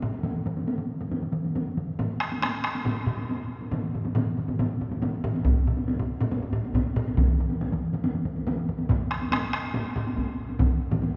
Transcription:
0.02 taiko low-mid
0.12 taiko high
0.23 taiko mid, taiko high
0.46 taiko mid
0.57 taiko high
0.68 taiko high
0.79 taiko mid
1.01 taiko mid, taiko high
1.11 taiko mid, taiko high
1.22 taiko mid
1.33 taiko mid
1.45 taiko high
1.55 taiko mid, taiko high
1.77 taiko mid
1.99 taiko low-mid, taiko high
2.20 taiko rim
2.32 taiko high
2.42 taiko rim, taiko high
2.64 taiko rim
2.75 taiko high
2.85 taiko low-mid, taiko high
3.07 taiko low-mid
3.18 taiko high
3.29 taiko high
3.61 taiko high
3.72 taiko low-mid, taiko mid, taiko high
3.94 taiko low-mid, taiko mid
4.05 taiko low-mid, taiko mid, taiko high
4.15 taiko low-mid, taiko mid, taiko high
4.37 taiko low-mid, taiko mid
4.48 taiko low-mid, taiko mid, taiko high
4.59 taiko low-mid, taiko mid, taiko high
4.81 taiko low-mid, taiko mid
4.92 taiko low-mid, taiko mid, taiko high
5.02 taiko low-mid, taiko mid, taiko high
5.24 taiko low-mid, taiko mid
5.35 taiko high
5.45 taiko, taiko low-mid, taiko high
5.67 taiko low-mid
5.77 taiko high
5.88 taiko high
5.99 taiko low-mid
6.21 taiko low-mid, taiko high
6.31 taiko low-mid, taiko high
6.43 taiko low-mid
6.53 taiko low-mid
6.64 taiko high
6.74 taiko, taiko low-mid, taiko high
6.96 taiko low-mid
7.08 taiko high
7.17 taiko, taiko mid, taiko high
7.40 taiko mid
7.50 taiko high
7.61 taiko high
7.72 taiko mid
7.93 taiko mid, taiko high
8.04 taiko mid, taiko high
8.15 taiko mid
8.25 taiko mid
8.36 taiko high
8.47 taiko mid, taiko high
8.69 taiko mid
8.78 taiko high
8.89 taiko, taiko low-mid, taiko high
9.11 taiko rim
9.21 taiko high
9.32 taiko rim, taiko high
9.53 taiko rim
9.64 taiko high
9.74 taiko low-mid, taiko high
9.96 taiko low-mid
10.07 taiko high
10.17 taiko, taiko high
10.49 taiko high
10.60 taiko, taiko low-mid, taiko mid, taiko high
10.92 taiko low-mid, taiko mid, taiko high
11.02 taiko high

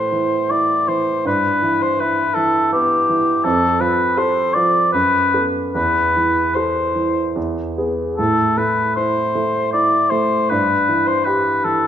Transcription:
Already playing: A2 E3 A4 C5
0.12 E3
0.51 E4 D5
0.88 E3 C5
1.25 G2 B4
1.62 E3
1.82 C5
2.00 E4 B4
2.34 E3 A4
2.73 B3 G4
3.09 E3
3.44 F2 A4
3.81 F3 B4
4.17 A4 C5
4.54 F3 D5
4.92 F#2 B4
5.34 B3 A4
5.74 E2 B4
6.16 E3
6.55 A4 C5
6.95 E3
7.36 E2
7.78 B3 G#4
8.17 A2 A4
8.58 A3 B4
8.96 E4 C5
9.35 A3
9.73 E4 D5
10.10 A3 C5
10.49 G2 B4
10.89 E3
11.07 C5
11.25 G4 B4
11.64 E3 A4

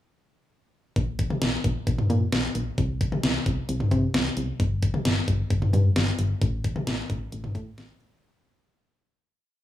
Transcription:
0.96 A#1, kick, closed hi-hat
1.19 kick, closed hi-hat
1.30 mid tom
1.42 A#1, snare, closed hi-hat
1.64 A#1, kick, closed hi-hat
1.87 A#1, kick, closed hi-hat
1.98 mid tom
2.10 A#2, closed hi-hat, mid tom
2.32 A#1, snare, closed hi-hat
2.55 A#1, closed hi-hat
2.78 C2, kick, closed hi-hat
3.01 kick, closed hi-hat
3.12 mid tom
3.23 C2, snare, closed hi-hat
3.46 C2, kick, closed hi-hat
3.69 C2, closed hi-hat
3.80 mid tom
3.91 C3, kick, closed hi-hat, mid tom
4.14 C2, snare, closed hi-hat
4.37 C2, closed hi-hat
4.60 G1, kick, closed hi-hat
4.83 kick, closed hi-hat
4.94 mid tom
5.05 G1, snare, closed hi-hat
5.28 G1, kick, closed hi-hat
5.50 G1, kick, closed hi-hat
5.62 mid tom
5.73 G2, closed hi-hat, mid tom
5.96 G1, snare, closed hi-hat
6.19 G1, closed hi-hat
6.42 A1, kick, closed hi-hat
6.64 kick, closed hi-hat
6.76 mid tom
6.87 A1, snare, closed hi-hat
7.10 A1, kick, closed hi-hat
7.32 A1, closed hi-hat
7.44 mid tom
7.55 A2, kick, closed hi-hat
7.78 A1, snare, closed hi-hat
8.00 A1, closed hi-hat

